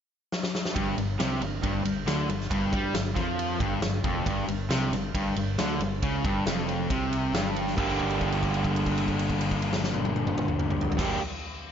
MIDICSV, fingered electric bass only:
0, 0, Header, 1, 2, 480
1, 0, Start_track
1, 0, Key_signature, -2, "minor"
1, 0, Tempo, 436999
1, 837, Time_signature, 4, 2, 24, 8
1, 12872, End_track
2, 0, Start_track
2, 0, Title_t, "Fingered electric bass"
2, 0, Program_c, 0, 33
2, 836, Note_on_c, 0, 31, 92
2, 1060, Note_off_c, 0, 31, 0
2, 1075, Note_on_c, 0, 31, 84
2, 1300, Note_off_c, 0, 31, 0
2, 1317, Note_on_c, 0, 36, 102
2, 1541, Note_off_c, 0, 36, 0
2, 1559, Note_on_c, 0, 31, 85
2, 1782, Note_off_c, 0, 31, 0
2, 1791, Note_on_c, 0, 31, 88
2, 2018, Note_off_c, 0, 31, 0
2, 2036, Note_on_c, 0, 31, 73
2, 2261, Note_off_c, 0, 31, 0
2, 2281, Note_on_c, 0, 38, 89
2, 2504, Note_off_c, 0, 38, 0
2, 2513, Note_on_c, 0, 31, 74
2, 2740, Note_off_c, 0, 31, 0
2, 2756, Note_on_c, 0, 31, 90
2, 2982, Note_off_c, 0, 31, 0
2, 2992, Note_on_c, 0, 43, 95
2, 3217, Note_off_c, 0, 43, 0
2, 3224, Note_on_c, 0, 31, 86
2, 3457, Note_off_c, 0, 31, 0
2, 3474, Note_on_c, 0, 41, 91
2, 3926, Note_off_c, 0, 41, 0
2, 3954, Note_on_c, 0, 31, 97
2, 4180, Note_off_c, 0, 31, 0
2, 4187, Note_on_c, 0, 31, 72
2, 4420, Note_off_c, 0, 31, 0
2, 4437, Note_on_c, 0, 29, 90
2, 4665, Note_off_c, 0, 29, 0
2, 4680, Note_on_c, 0, 31, 102
2, 4901, Note_off_c, 0, 31, 0
2, 4908, Note_on_c, 0, 31, 82
2, 5141, Note_off_c, 0, 31, 0
2, 5155, Note_on_c, 0, 36, 100
2, 5385, Note_off_c, 0, 36, 0
2, 5395, Note_on_c, 0, 31, 83
2, 5625, Note_off_c, 0, 31, 0
2, 5649, Note_on_c, 0, 31, 97
2, 5873, Note_off_c, 0, 31, 0
2, 5889, Note_on_c, 0, 31, 77
2, 6114, Note_off_c, 0, 31, 0
2, 6130, Note_on_c, 0, 38, 87
2, 6355, Note_off_c, 0, 38, 0
2, 6371, Note_on_c, 0, 31, 78
2, 6595, Note_off_c, 0, 31, 0
2, 6619, Note_on_c, 0, 37, 88
2, 6840, Note_off_c, 0, 37, 0
2, 6863, Note_on_c, 0, 31, 97
2, 7082, Note_off_c, 0, 31, 0
2, 7093, Note_on_c, 0, 29, 98
2, 7540, Note_off_c, 0, 29, 0
2, 7581, Note_on_c, 0, 36, 85
2, 8024, Note_off_c, 0, 36, 0
2, 8055, Note_on_c, 0, 31, 93
2, 8501, Note_off_c, 0, 31, 0
2, 8540, Note_on_c, 0, 31, 91
2, 11976, Note_off_c, 0, 31, 0
2, 12068, Note_on_c, 0, 31, 100
2, 12271, Note_off_c, 0, 31, 0
2, 12872, End_track
0, 0, End_of_file